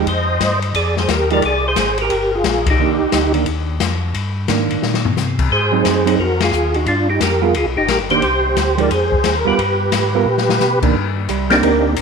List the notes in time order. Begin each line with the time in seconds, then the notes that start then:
0.06 F2 C5 D#5, kick, ride
0.40 G2, kick, snare, hi-hat pedal, ride
0.62 ride
0.74 F2 G#4 D5, kick, ride
0.97 G#4 C5, snare
1.08 D#2 G4 A#4, kick, snare, hi-hat pedal, ride
1.30 F3 G#3 D#4 G4 A#4 D5, ride
1.42 C2 G#4 D5, kick, ride
1.68 G#4 C5
1.76 G#1, kick, snare, hi-hat pedal, ride
1.98 A#4, ride
2.02 G4
2.10 G1, kick, ride
2.34 F4 G#4
2.44 A#1, kick, snare, hi-hat pedal, ride
2.66 D#4, kick, ride
2.71 G4
2.78 C2 D#3 A#3 D4
3.01 C2
3.12 D2, kick, snare, hi-hat pedal, ride
3.34 D#3 A#3 D4, ride
3.46 D#2, kick, ride
3.80 F2, kick, snare, hi-hat pedal, ride
4.14 G2, kick, ride
4.48 G#2 D#3 A#3 D4, kick, snare, hi-hat pedal, ride
4.71 G#2, ride
4.83 A#2, snare
4.94 snare
5.05 floor tom
5.16 C3, snare, hi-hat pedal
5.39 kick, crash
5.51 G#2 G#4 C5, kick
5.72 F#3 C4 D#4
5.84 F#2, kick, snare, hi-hat pedal, ride
6.05 F#3 C4 D#4, ride
6.19 F2 F#4 A#4, kick
6.40 F4 G#4, snare, ride
6.52 D#2, hi-hat pedal
6.74 D#4 F#4, ride
6.86 G2 D4 F4, kick, ride
7.10 D#4 G4
7.20 F2 G4 A#4, kick, snare, hi-hat pedal, ride
7.41 G3 B3 F4 G#4 A#4
7.54 D2 F4 G#4, kick, ride
7.65 B1
7.76 G1 D#4 G4
7.88 A#1 G4 A#4, kick, snare, hi-hat pedal, ride
7.99 G1
8.10 F1 D#3 A#3 D4 G4 C5, ride
8.22 C2, kick, ride
8.56 D2, kick, snare, hi-hat pedal, ride
8.77 F3 G#3 D#4 G4 A#4 D5, ride
8.90 F2 G#4 C5, kick, ride
9.12 F2, kick
9.24 D#2, kick, snare, hi-hat pedal, ride
9.37 A#4
9.45 D#2 G3 B3 F4 G4 A#4 B4
9.58 G2, kick, ride
9.92 G#2, kick, snare, hi-hat pedal, ride
10.15 G3 B3 F4 A#4
10.26 A#2
10.38 snare
10.49 snare
10.60 B2, snare, hi-hat pedal
10.82 D#3 A#3 D4, kick, crash
10.95 G2
11.28 C2 G3 G4, kick, hi-hat pedal, ride
11.50 A#3 C4 D4 D#4 G4, snare, ride
11.62 D2 A#3 A#4, kick, ride
11.96 A#1, kick, hi-hat pedal, ride